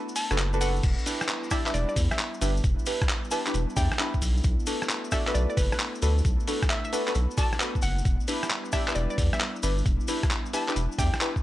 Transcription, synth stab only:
0.31 0.36 D4 medium
0.31 0.36 F#4 medium
0.31 0.36 A4 medium
0.31 0.36 B4 loud
0.54 0.59 D4 medium
0.54 0.59 F#4 medium
0.54 0.59 A4 medium
0.54 0.59 B4 medium
0.61 0.76 D4 loud
0.61 0.76 F#4 medium
0.61 0.76 A4 medium
0.61 0.76 B4 loud
1.06 1.49 D4 medium
1.06 1.49 E4 medium
1.06 1.49 G4 medium
1.06 1.49 B4 medium
1.51 1.61 D4 loud
1.51 1.61 E4 medium
1.51 1.61 G4 loud
1.51 1.61 D5 loud
1.66 2.40 D4 medium
1.66 2.40 E4 medium
1.66 2.40 G4 medium
1.66 2.40 B4 medium
2.41 2.51 D4 medium
2.41 2.51 E4 medium
2.41 2.51 G4 medium
2.41 2.51 B4 medium
2.87 3.02 D4 medium
2.87 3.02 E4 medium
2.87 3.02 G4 medium
2.87 3.02 B4 medium
3.32 3.41 D4 medium
3.32 3.41 E4 medium
3.32 3.41 G4 medium
3.32 3.41 B4 loud
3.47 3.54 D4 loud
3.47 3.54 E4 medium
3.47 3.54 G4 medium
3.47 3.54 B4 loud
3.77 3.86 D4 loud
3.77 3.86 E4 medium
3.77 3.86 G4 medium
3.77 3.86 D5 loud
3.99 4.09 D4 medium
3.99 4.09 E4 medium
3.99 4.09 G4 medium
3.99 4.09 B4 loud
4.67 5.10 D4 medium
4.67 5.10 F#4 medium
4.67 5.10 A4 medium
4.67 5.10 B4 medium
5.12 5.21 D4 loud
5.12 5.21 F#4 loud
5.12 5.21 A4 loud
5.12 5.21 D5 loud
5.27 6.01 D4 medium
5.27 6.01 F#4 medium
5.27 6.01 A4 medium
5.27 6.01 B4 medium
6.02 6.12 D4 medium
6.02 6.12 F#4 medium
6.02 6.12 A4 medium
6.02 6.12 B4 loud
6.47 6.62 D4 medium
6.47 6.62 F#4 medium
6.47 6.62 A4 medium
6.47 6.62 B4 medium
6.92 7.02 D4 medium
6.92 7.02 F#4 medium
6.92 7.02 A4 medium
6.92 7.02 B4 loud
7.07 7.15 D4 loud
7.07 7.15 F#4 medium
7.07 7.15 A4 medium
7.07 7.15 B4 loud
7.38 7.47 D4 loud
7.38 7.47 F#4 medium
7.38 7.47 A4 medium
7.38 7.47 D5 loud
7.60 7.70 D4 medium
7.60 7.70 F#4 medium
7.60 7.70 A4 medium
7.60 7.70 B4 loud
8.28 8.71 D4 medium
8.28 8.71 E4 medium
8.28 8.71 G4 medium
8.28 8.71 B4 medium
8.73 8.82 D4 loud
8.73 8.82 E4 loud
8.73 8.82 G4 loud
8.73 8.82 D5 loud
8.88 9.61 D4 medium
8.88 9.61 E4 medium
8.88 9.61 G4 medium
8.88 9.61 B4 medium
9.63 9.72 D4 medium
9.63 9.73 E4 medium
9.63 9.72 G4 medium
9.63 9.72 B4 loud
10.08 10.23 D4 medium
10.08 10.23 E4 medium
10.08 10.23 G4 medium
10.08 10.23 B4 medium
10.53 10.63 D4 medium
10.53 10.63 E4 medium
10.53 10.63 G4 medium
10.53 10.63 B4 loud
10.69 10.76 D4 medium
10.69 10.76 E4 medium
10.69 10.76 G4 medium
10.69 10.76 B4 loud
10.98 11.08 D4 loud
10.98 11.08 E4 medium
10.98 11.08 G4 medium
10.98 11.08 D5 loud
11.21 11.30 D4 loud
11.21 11.30 E4 medium
11.21 11.30 G4 medium
11.21 11.30 B4 loud

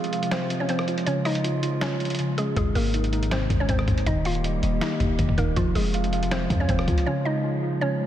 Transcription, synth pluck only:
0.00 0.29 G#3 medium
0.00 0.28 G#4 medium
0.31 0.59 C4 medium
0.31 0.58 C5 medium
0.60 0.68 C#4 medium
0.60 0.68 C#5 medium
0.69 1.05 C4 medium
0.69 1.04 C5 medium
1.06 1.23 C#4 medium
1.06 1.22 C#5 medium
1.25 1.79 D#4 medium
1.25 1.78 D#5 medium
1.81 2.35 C#4 medium
1.81 2.34 C#5 loud
2.38 2.54 G#3 medium
2.38 2.54 G#4 medium
2.57 2.73 G#3 medium
2.57 2.73 G#4 medium
2.75 3.29 A#3 medium
2.75 3.28 A#4 medium
3.32 3.59 C4 medium
3.32 3.59 C5 medium
3.60 3.68 C#4 medium
3.60 3.68 C#5 medium
3.69 4.05 C4 medium
3.69 4.04 C5 medium
4.07 4.23 D#4 medium
4.07 4.23 D#5 loud
4.25 4.79 F4 medium
4.25 4.78 F5 medium
4.82 5.35 D#4 medium
4.82 5.34 D#5 medium
5.38 5.54 A#3 medium
5.38 5.54 A#4 medium
5.57 5.73 F3 medium
5.57 5.73 F4 loud
5.75 6.29 G#3 medium
5.75 6.28 G#4 medium
6.31 6.59 C4 medium
6.31 6.58 C5 medium
6.60 6.68 C#4 medium
6.60 6.68 C#5 medium
6.69 7.05 C4 medium
6.69 7.04 C5 medium
7.06 7.23 C#4 medium
7.06 7.22 C#5 medium
7.25 7.79 D#4 medium
7.25 7.78 D#5 medium
7.81 8.06 C#4 medium
7.81 8.06 C#5 loud

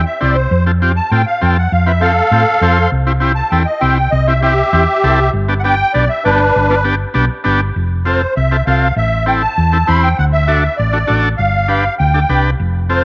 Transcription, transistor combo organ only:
0.21 0.36 C4 medium
0.21 0.37 E4 medium
0.21 0.37 G4 medium
0.66 0.71 C4 medium
0.66 0.72 F4 medium
0.66 0.72 A4 medium
0.82 0.92 C4 medium
0.82 0.92 F4 medium
0.82 0.92 G4 medium
1.12 1.22 C4 medium
1.12 1.22 F4 medium
1.12 1.22 A4 medium
1.41 1.57 C4 medium
1.41 1.57 F4 medium
1.41 1.58 A4 medium
1.86 1.92 C4 medium
1.86 1.92 F4 medium
1.86 1.92 B4 medium
2.01 2.12 C4 medium
2.01 2.12 F4 medium
2.01 2.12 A4 medium
2.32 2.43 C4 medium
2.32 2.43 F4 medium
2.32 2.43 A4 medium
2.62 2.78 C4 medium
2.62 2.79 F4 medium
2.62 2.79 A4 medium
2.62 2.91 C5 medium
3.07 3.12 C4 medium
3.07 3.12 E4 medium
3.07 3.13 G4 medium
3.20 3.32 C4 medium
3.20 3.33 E4 medium
3.20 3.33 G4 medium
3.52 3.63 C4 medium
3.52 3.63 E4 medium
3.52 3.63 A4 medium
3.81 3.98 C4 medium
3.81 3.98 E4 medium
3.81 3.98 G4 medium
4.28 4.33 C4 medium
4.28 4.34 E4 medium
4.28 4.33 G4 medium
4.42 4.53 C4 medium
4.42 4.54 E4 medium
4.42 4.54 G4 medium
4.73 4.84 C4 medium
4.73 4.84 E4 medium
4.73 4.85 G4 medium
5.04 5.20 C4 medium
5.04 5.20 E4 medium
5.04 5.20 A4 loud
5.48 5.54 B3 medium
5.48 5.54 D4 medium
5.48 5.54 G4 medium
5.64 5.75 B3 medium
5.64 5.75 D4 medium
5.64 5.75 G4 medium
5.94 6.05 B3 medium
5.94 6.05 D4 medium
5.94 6.05 G4 medium
6.25 6.41 B3 medium
6.25 6.41 D4 medium
6.25 6.41 G4 medium
6.69 6.75 B3 medium
6.69 6.75 D4 medium
6.69 6.76 F4 medium
6.84 6.95 B3 medium
6.84 6.95 D4 medium
6.84 6.96 G4 loud
7.14 7.25 B3 medium
7.14 7.25 D4 medium
7.14 7.26 G4 loud
7.44 7.61 B3 medium
7.44 7.61 D4 medium
7.44 7.61 G4 loud
8.06 8.22 C4 medium
8.06 8.22 F4 medium
8.06 8.22 A4 medium
8.51 8.57 C4 medium
8.51 8.57 F4 medium
8.51 8.57 A4 medium
8.67 8.88 C4 medium
8.67 8.88 F4 medium
8.67 8.88 A4 medium
9.26 9.42 C4 medium
9.26 9.42 E4 medium
9.26 9.43 A4 medium
9.72 9.78 C4 medium
9.72 9.78 E4 medium
9.72 9.78 A4 medium
9.87 10.08 C4 medium
9.87 10.08 E4 medium
9.87 10.09 C5 medium
10.48 10.64 D4 medium
10.48 10.64 F#4 medium
10.48 10.64 A4 medium
10.93 10.98 D4 medium
10.93 10.98 F#4 medium
10.93 10.99 A4 medium
11.07 11.29 D4 medium
11.07 11.29 F#4 medium
11.07 11.29 A4 medium
11.68 11.84 D4 medium
11.68 11.84 G4 medium
11.68 11.85 B4 medium
12.14 12.19 D4 medium
12.14 12.20 G4 medium
12.14 12.20 A4 medium
12.29 12.50 D4 medium
12.29 12.51 G4 medium
12.29 12.50 B4 medium
12.89 13.04 C4 medium
12.89 13.04 F4 medium
12.89 13.04 A4 medium

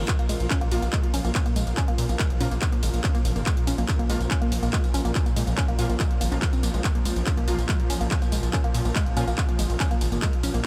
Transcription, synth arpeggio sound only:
0.19 0.25 A#3 medium
0.29 0.36 G#3 medium
0.50 0.57 C#4 loud
0.61 0.65 A#3 loud
0.82 0.88 A#3 medium
0.93 0.99 G#3 medium
1.14 1.20 C#4 loud
1.25 1.28 A#3 loud
1.46 1.52 A#3 medium
1.56 1.62 G#3 medium
1.77 1.83 C#4 loud
1.88 1.92 A#3 loud
2.09 2.15 A#3 medium
2.19 2.26 G#3 medium
2.41 2.47 C#4 loud
2.51 2.55 A#3 loud
2.72 2.78 A#3 medium
2.83 2.89 G#3 medium
3.04 3.10 C#4 loud
3.15 3.18 A#3 loud
3.36 3.42 A#3 medium
3.46 3.52 G#3 medium
3.67 3.74 C#4 loud
3.78 3.82 A#3 loud
3.99 4.05 A#3 medium
4.10 4.16 G#3 medium
4.31 4.37 C#4 loud
4.42 4.45 A#3 loud
4.63 4.69 A#3 medium
4.73 4.79 G#3 medium
4.94 5.00 C#4 loud
5.05 5.08 A#3 loud
5.26 5.32 A#3 medium
5.36 5.43 G#3 medium
5.58 5.64 C#4 loud
5.68 5.72 A#3 loud
5.89 5.95 A#3 medium
6.00 6.06 G#3 medium
6.21 6.27 A#3 medium
6.32 6.35 C#4 medium
6.53 6.62 C4 medium
6.63 6.67 A#3 medium
6.74 6.83 G#3 medium
6.95 7.01 A#3 medium
7.05 7.12 G#3 medium
7.27 7.33 C#4 loud
7.37 7.41 A#3 loud
7.58 7.64 A#3 medium
7.69 7.75 G#3 medium
7.90 7.96 C#4 loud
8.01 8.04 A#3 loud
8.22 8.28 A#3 medium
8.32 8.38 G#3 medium
8.53 8.60 C#4 loud
8.64 8.68 A#3 loud
8.85 8.91 A#3 medium
8.96 9.02 G#3 medium
9.17 9.23 C#4 loud
9.28 9.31 A#3 loud
9.49 9.55 A#3 medium
9.59 9.65 G#3 medium
9.80 9.86 C#4 loud
9.91 9.94 A#3 loud
10.12 10.18 A#3 medium
10.22 10.29 G#3 medium
10.43 10.50 C#4 loud
10.54 10.58 A#3 loud

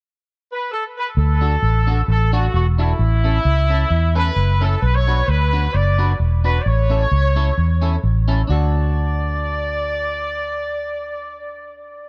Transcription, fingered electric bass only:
1.17 1.55 D2 loud
1.62 2.01 A1 medium
2.08 2.47 A1 medium
2.54 2.93 E1 medium
2.99 3.38 A1 medium
3.45 3.84 C#2 medium
3.90 4.29 E2 loud
4.36 4.75 F#1 medium
4.82 5.21 B1 medium
5.28 5.67 D2 medium
5.74 6.13 F#1 medium
6.20 6.58 E1 medium
6.66 7.05 A1 loud
7.11 7.50 C#2 medium
7.58 7.96 E2 medium
8.04 8.42 A1 loud
8.49 12.09 D2 medium

